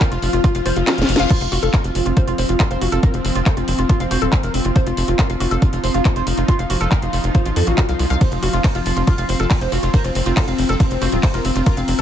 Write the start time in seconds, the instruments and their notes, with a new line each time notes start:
Already playing: synth drone F3 F4, ambient pad C4 F4 F5 F6
0.01 analog synth lead A#4, synth arpeggio sound C5, kick, clap, closed hi-hat
0.12 analog synth bass F1, synth arpeggio sound F4, analog synth lead F4, closed hi-hat
0.22 analog synth bass F1, analog synth lead F4, open hi-hat
0.33 analog synth bass F1, synth arpeggio sound F4, closed hi-hat
0.44 analog synth lead F4, synth arpeggio sound F4, kick, closed hi-hat, reverse cymbal
0.55 analog synth bass F1, analog synth lead F4, synth arpeggio sound F5, closed hi-hat
0.66 analog synth bass F1, synth arpeggio sound F4, analog synth lead C5, open hi-hat
0.76 analog synth bass F1, analog synth lead F4, synth arpeggio sound F5, closed hi-hat
0.87 analog synth lead F4, synth arpeggio sound F#4, snare, clap, closed hi-hat
0.98 analog synth bass F1, analog synth lead F5, snare, closed hi-hat
1.09 analog synth bass F1, analog synth lead F4, open hi-hat
1.16 analog synth bass F1, analog synth lead F4, synth arpeggio sound F5, snare, closed hi-hat
1.30 synth drone F3 C4, synth arpeggio sound F4, analog synth lead C5, kick, closed hi-hat, crash
1.41 analog synth bass F1, analog synth lead F4, synth arpeggio sound F5, closed hi-hat
1.52 analog synth bass F1, analog synth lead F4, synth arpeggio sound F#4, open hi-hat
1.63 analog synth bass F1, analog synth lead F4, synth arpeggio sound A4, closed hi-hat
1.74 analog synth lead A#4, kick, clap, closed hi-hat
1.84 analog synth bass F1, analog synth lead F4, closed hi-hat
1.95 analog synth bass F1, analog synth lead F4, open hi-hat
2.06 analog synth bass F1, synth arpeggio sound F4, closed hi-hat
2.17 analog synth lead F4, synth arpeggio sound C5, kick, closed hi-hat
2.27 analog synth bass F1, synth arpeggio sound F4, analog synth lead F4, ambient pad C6, closed hi-hat
2.38 analog synth bass F1, analog synth lead C5, open hi-hat
2.49 analog synth bass F1, synth arpeggio sound F4, analog synth lead F4, closed hi-hat
2.60 synth arpeggio sound F4, analog synth lead F4, kick, clap, closed hi-hat
2.71 analog synth bass F1, analog synth lead C5, synth arpeggio sound F5, closed hi-hat
2.81 analog synth bass F1, analog synth lead F4, synth arpeggio sound F#4, open hi-hat
2.92 analog synth bass F1, analog synth lead F4, synth arpeggio sound A4, closed hi-hat
3.03 analog synth lead A#4, kick, closed hi-hat
3.14 analog synth bass F1, analog synth lead C4, closed hi-hat
3.25 analog synth bass F1, analog synth lead C4, open hi-hat
3.35 analog synth bass F1, analog synth lead C4, synth arpeggio sound F4, closed hi-hat
3.46 analog synth lead A4, synth arpeggio sound C5, kick, clap, closed hi-hat
3.57 analog synth bass F1, analog synth lead C4, synth arpeggio sound F4, closed hi-hat
3.68 analog synth bass F1, analog synth lead C4, open hi-hat
3.79 analog synth bass F1, synth arpeggio sound F4, closed hi-hat
3.89 analog synth lead C4, synth arpeggio sound F4, kick, closed hi-hat
4.00 analog synth bass F1, analog synth lead C4, synth arpeggio sound F5, closed hi-hat
4.11 analog synth bass F1, synth arpeggio sound F#4, analog synth lead C5, open hi-hat
4.22 analog synth bass D#1, analog synth lead C4, synth arpeggio sound A4, closed hi-hat
4.33 analog synth lead C4, kick, clap, closed hi-hat
4.43 analog synth bass F1, analog synth lead A#4, closed hi-hat
4.54 analog synth bass F1, analog synth lead C4, open hi-hat
4.65 analog synth bass F1, analog synth lead C4, synth arpeggio sound F4, closed hi-hat
4.76 synth drone D#4, synth arpeggio sound C5, analog synth lead C5, kick, closed hi-hat
4.86 analog synth bass F1, synth arpeggio sound F4, analog synth lead F4, closed hi-hat
4.97 analog synth bass F1, analog synth lead F4, open hi-hat
5.08 analog synth bass F1, synth arpeggio sound F4, analog synth lead F4, closed hi-hat
5.19 synth arpeggio sound F4, analog synth lead A#4, kick, clap, closed hi-hat
5.30 analog synth bass F1, analog synth lead F4, synth arpeggio sound F5, closed hi-hat
5.40 analog synth bass F1, analog synth lead F4, synth arpeggio sound F#4, open hi-hat
5.51 analog synth bass F1, synth arpeggio sound A4, closed hi-hat
5.62 analog synth lead F4, kick, closed hi-hat
5.73 analog synth bass F1, analog synth lead F4, closed hi-hat
5.84 analog synth bass F1, analog synth lead C5, open hi-hat
5.94 analog synth bass F1, analog synth lead F4, synth arpeggio sound F4, closed hi-hat
6.05 analog synth lead F4, synth arpeggio sound C5, kick, clap, closed hi-hat
6.16 analog synth bass F1, synth arpeggio sound F4, analog synth lead C5, closed hi-hat
6.27 analog synth bass F1, analog synth lead F4, open hi-hat
6.37 analog synth bass F1, analog synth lead F4, synth arpeggio sound F4, closed hi-hat
6.48 synth arpeggio sound F4, analog synth lead C5, kick, closed hi-hat
6.59 analog synth bass F1, analog synth lead F4, synth arpeggio sound F5, closed hi-hat
6.70 analog synth bass F1, analog synth lead F4, synth arpeggio sound F#4, open hi-hat
6.81 analog synth bass F1, analog synth lead F4, synth arpeggio sound A4, closed hi-hat
6.91 analog synth lead A#4, kick, clap, closed hi-hat
7.02 analog synth bass F1, analog synth lead F4, closed hi-hat
7.13 analog synth bass F1, analog synth lead F4, open hi-hat
7.24 analog synth bass F1, synth arpeggio sound F4, closed hi-hat
7.35 analog synth lead F4, synth arpeggio sound C5, kick, closed hi-hat
7.45 analog synth bass A1, analog synth lead F4, synth arpeggio sound F4, closed hi-hat
7.56 analog synth bass F2, analog synth lead A4, open hi-hat
7.67 analog synth bass A1, analog synth lead F4, synth arpeggio sound F#4, closed hi-hat
7.78 analog synth lead F4, synth arpeggio sound F#4, kick, clap, closed hi-hat
7.89 analog synth bass C2, analog synth lead F4, synth arpeggio sound F5, closed hi-hat
7.99 analog synth bass C2, synth arpeggio sound F4, analog synth lead F4, open hi-hat
8.10 analog synth bass C2, analog synth lead F4, synth arpeggio sound F5, closed hi-hat
8.21 synth drone C4, analog synth lead C5, kick, closed hi-hat, ride
8.32 analog synth bass F1, analog synth lead F4, closed hi-hat
8.43 analog synth bass F1, analog synth lead F4, synth arpeggio sound F#4, open hi-hat
8.53 analog synth bass F1, analog synth lead F4, synth arpeggio sound F4, closed hi-hat
8.64 analog synth lead A#4, synth arpeggio sound C5, kick, clap, closed hi-hat, ride
8.75 analog synth bass F1, synth arpeggio sound F4, analog synth lead F4, closed hi-hat
8.86 analog synth bass F1, analog synth lead F4, open hi-hat
8.97 analog synth bass F1, synth arpeggio sound F4, closed hi-hat
9.07 synth arpeggio sound F4, analog synth lead F4, kick, closed hi-hat, ride
9.18 analog synth bass F1, analog synth lead F4, synth arpeggio sound F5, ambient pad A#5, closed hi-hat
9.29 analog synth bass F1, analog synth lead C5, open hi-hat
9.40 analog synth bass F1, analog synth lead F4, synth arpeggio sound A4, closed hi-hat
9.51 analog synth lead F4, kick, clap, closed hi-hat, ride
9.61 analog synth bass F1, analog synth lead C5, closed hi-hat
9.72 analog synth bass F1, analog synth lead F4, synth arpeggio sound F#4, open hi-hat
9.83 analog synth bass F1, synth arpeggio sound F4, analog synth lead F4, closed hi-hat
9.94 analog synth lead A#4, synth arpeggio sound C5, kick, closed hi-hat, ride
10.04 analog synth bass F1, analog synth lead C4, synth arpeggio sound F4, closed hi-hat
10.15 analog synth bass F1, analog synth lead C4, open hi-hat
10.26 analog synth bass F1, analog synth lead C4, synth arpeggio sound F4, closed hi-hat
10.37 synth arpeggio sound F4, analog synth lead A4, kick, clap, closed hi-hat, ride
10.48 analog synth bass F1, analog synth lead C4, synth arpeggio sound F5, closed hi-hat
10.58 analog synth bass F1, analog synth lead C4, open hi-hat
10.69 analog synth bass F1, synth arpeggio sound A4, closed hi-hat
10.80 analog synth lead C4, kick, closed hi-hat, ride
10.91 analog synth bass F1, analog synth lead C4, closed hi-hat
11.02 analog synth bass F1, synth arpeggio sound F#4, analog synth lead C5, open hi-hat
11.12 analog synth bass D#1, analog synth lead C4, synth arpeggio sound F4, closed hi-hat
11.23 analog synth lead C4, synth arpeggio sound C5, kick, clap, closed hi-hat, ride
11.34 analog synth bass F1, synth arpeggio sound F4, analog synth lead A#4, closed hi-hat
11.45 analog synth bass F1, analog synth lead C4, open hi-hat
11.56 analog synth bass F1, analog synth lead C4, synth arpeggio sound F4, closed hi-hat
11.66 synth drone A3, synth arpeggio sound F4, analog synth lead A#4, kick, closed hi-hat, ride
11.77 analog synth bass F1, analog synth lead C4, synth arpeggio sound F5, closed hi-hat
11.88 analog synth bass F1, analog synth lead C4, open hi-hat